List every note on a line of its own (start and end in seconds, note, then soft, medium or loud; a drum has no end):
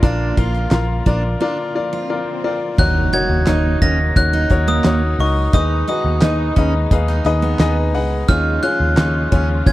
0.00 0.31 A#1 loud
0.00 1.02 A#2 medium
0.00 2.74 D3 medium
0.00 2.74 F3 medium
0.00 2.74 A#3 medium
0.00 0.36 D4 medium
0.00 0.03 F4 medium
0.00 2.74 F4 medium
0.00 0.33 F4 loud
0.00 0.03 A#4 medium
0.00 0.33 A#4 medium
0.00 0.03 D5 medium
0.00 0.33 D5 loud
0.00 2.06 D7 loud
0.00 kick loud
0.00 closed hi-hat medium
0.00 swell medium
0.37 0.66 A#1 medium
0.37 0.86 F4 medium
0.37 0.67 F4 medium
0.37 0.67 A#4 medium
0.37 0.67 F5 medium
0.37 kick loud
0.37 closed hi-hat medium
0.55 closed hi-hat soft
0.71 1.00 A#1 loud
0.71 1.02 F4 medium
0.71 1.02 A#4 medium
0.71 1.02 F5 loud
0.71 snare loud
0.71 clap loud
0.71 closed hi-hat medium
1.06 1.35 A#1 medium
1.06 1.22 D4 medium
1.06 1.36 F4 medium
1.06 1.36 A#4 medium
1.06 1.36 D5 medium
1.06 kick medium
1.06 closed hi-hat medium
1.40 1.57 D4 medium
1.40 1.71 F4 loud
1.40 1.71 A#4 medium
1.40 1.71 D5 loud
1.75 2.05 F4 medium
1.75 2.05 A#4 medium
1.75 2.05 D5 loud
1.93 2.09 F4 medium
2.10 2.40 F4 medium
2.10 2.40 A#4 medium
2.10 2.39 D5 medium
2.44 2.74 F4 medium
2.44 2.74 A#4 medium
2.44 2.74 D5 medium
2.78 3.07 D#2 medium
2.78 5.51 C#3 medium
2.78 3.78 D#3 medium
2.78 5.51 F#3 medium
2.78 5.51 A#3 medium
2.78 8.25 D#4 medium
2.78 3.11 D#4 medium
2.78 3.08 D#4 medium
2.78 3.08 F#4 medium
2.78 3.08 A#4 medium
2.78 3.08 C#5 medium
2.78 3.14 F#6 loud
2.78 kick loud
2.78 crash medium
2.78 impact medium
3.13 3.43 D#4 medium
3.13 3.45 F#4 medium
3.13 3.43 F#4 medium
3.13 3.43 A#4 medium
3.13 3.43 C#5 medium
3.13 3.84 G#6 loud
3.13 closed hi-hat medium
3.30 3.44 D#2 medium
3.47 3.75 D#2 medium
3.47 3.80 D#4 medium
3.47 3.77 D#4 medium
3.47 3.77 F#4 medium
3.47 3.77 A#4 medium
3.47 3.77 C#5 medium
3.47 snare loud
3.47 clap medium
3.47 closed hi-hat loud
3.82 4.10 D#2 medium
3.82 3.98 C#4 medium
3.82 4.12 D#4 medium
3.82 4.12 F#4 medium
3.82 4.12 A#4 medium
3.82 4.12 D#5 medium
3.82 3.97 A#6 loud
3.82 kick medium
3.82 closed hi-hat medium
4.16 4.44 D#2 medium
4.16 4.46 D#4 medium
4.16 4.46 F#4 medium
4.16 4.46 A#4 medium
4.16 4.46 C#5 medium
4.16 4.70 F#6 loud
4.16 kick loud
4.16 closed hi-hat loud
4.33 4.50 D#4 medium
4.33 closed hi-hat medium
4.50 4.79 D#2 medium
4.50 4.81 D#4 medium
4.50 4.80 F#4 medium
4.50 4.80 A#4 medium
4.50 4.81 C#5 loud
4.50 kick medium
4.50 closed hi-hat medium
4.68 5.00 A#3 medium
4.68 5.21 D#6 loud
4.84 5.13 D#2 medium
4.84 5.15 D#4 medium
4.84 5.15 F#4 medium
4.84 5.15 A#4 medium
4.84 5.15 C#5 loud
4.84 snare loud
4.84 clap medium
4.84 closed hi-hat loud
5.19 5.47 C#2 medium
5.19 5.50 D#4 medium
5.19 5.49 F#4 medium
5.19 5.49 A#4 medium
5.19 5.49 D#5 medium
5.19 5.55 C#6 medium
5.19 open hi-hat medium
5.53 5.82 D#2 loud
5.53 8.26 B2 medium
5.53 8.26 D#3 medium
5.53 6.53 D#3 medium
5.53 9.73 G#3 medium
5.53 5.86 D#4 medium
5.53 5.83 D#4 medium
5.53 5.84 G#4 medium
5.53 5.83 B4 medium
5.53 5.83 D#5 medium
5.53 5.88 D#6 medium
5.53 kick loud
5.53 closed hi-hat medium
5.88 6.18 D#4 medium
5.88 6.21 F#4 medium
5.88 6.18 G#4 medium
5.88 6.18 B4 medium
5.88 6.18 D#5 medium
5.88 6.88 D#6 medium
5.88 closed hi-hat medium
6.05 6.19 D#2 loud
6.21 6.50 D#2 medium
6.21 6.55 D#4 medium
6.21 6.53 D#4 medium
6.21 6.53 G#4 medium
6.21 6.52 B4 medium
6.21 6.53 D#5 medium
6.21 snare loud
6.21 clap medium
6.21 closed hi-hat medium
6.56 6.85 D#2 loud
6.56 6.73 C#4 medium
6.56 6.87 D#4 medium
6.56 6.87 G#4 medium
6.56 6.87 B4 medium
6.56 6.87 D#5 medium
6.56 kick medium
6.56 closed hi-hat medium
6.91 7.19 D#2 loud
6.91 7.21 D#4 medium
6.91 7.21 G#4 medium
6.91 7.21 B4 medium
6.91 7.21 F5 medium
6.91 kick loud
6.91 closed hi-hat medium
7.08 7.25 D#4 medium
7.08 snare soft
7.08 closed hi-hat medium
7.25 7.53 D#2 medium
7.25 7.56 D#4 loud
7.25 7.56 G#4 loud
7.25 7.56 B4 loud
7.25 7.56 D#5 loud
7.25 closed hi-hat medium
7.42 7.75 B3 medium
7.42 closed hi-hat medium
7.59 7.94 D#2 medium
7.59 7.90 D#4 loud
7.59 7.90 G#4 loud
7.59 7.90 B4 loud
7.59 7.90 D#5 loud
7.59 snare loud
7.59 clap medium
7.59 closed hi-hat loud
7.94 8.22 C#2 loud
7.94 8.24 D#4 medium
7.94 8.24 G#4 medium
7.94 8.24 B4 medium
7.94 8.24 F#5 medium
7.94 open hi-hat medium
8.28 8.57 D#2 loud
8.28 9.73 C#3 medium
8.28 9.28 D#3 medium
8.28 9.73 F3 medium
8.28 8.59 C#4 medium
8.28 8.61 D#4 medium
8.28 9.73 F4 medium
8.28 8.59 F4 medium
8.28 8.59 G#4 medium
8.28 8.59 C#5 medium
8.28 8.64 F6 loud
8.28 kick loud
8.28 closed hi-hat medium
8.63 8.93 C#4 medium
8.63 8.96 F4 medium
8.63 8.93 F4 medium
8.63 8.93 G#4 medium
8.63 8.93 C#5 medium
8.63 9.28 F#6 loud
8.63 closed hi-hat medium
8.80 8.95 D#2 loud
8.97 9.26 D#2 loud
8.97 9.28 C#4 medium
8.97 9.30 D#4 medium
8.97 9.27 F4 medium
8.97 9.28 G#4 medium
8.97 9.28 C#5 medium
8.97 snare loud
8.97 clap medium
8.97 closed hi-hat medium
9.32 9.60 D#2 loud
9.32 9.48 C#4 medium
9.32 9.62 C#4 medium
9.32 9.62 F4 medium
9.32 9.62 G#4 medium
9.32 9.62 C#5 medium
9.32 kick medium
9.32 closed hi-hat medium
9.66 9.73 D#2 loud
9.66 9.73 C#4 medium
9.66 9.73 F4 medium
9.66 9.73 G#4 medium
9.66 9.73 C#5 medium
9.66 9.73 G#6 loud
9.66 kick loud
9.66 closed hi-hat loud